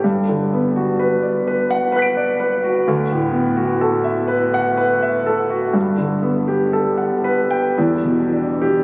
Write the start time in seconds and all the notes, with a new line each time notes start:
0.04 G2
0.29 D3
0.54 B3
0.76 F#4
0.99 B4
1.23 D5
1.47 B4
1.71 F#5
1.92 B4 B5
1.96 F#6 B6
2.02 D7
2.17 D5
2.40 B4
2.64 F#4
2.88 D2
3.12 A2
3.31 B3
3.57 F#4
3.81 A4
4.04 E5
4.28 B4
4.54 F#5
4.77 B4
5.02 E5
5.26 A4
5.50 F#4
5.73 G2
5.98 D3
6.23 B3
6.48 G4
6.73 A4
6.98 F#5
7.24 B4
7.51 G5
7.78 E2
8.04 B2
8.32 D4
8.62 G4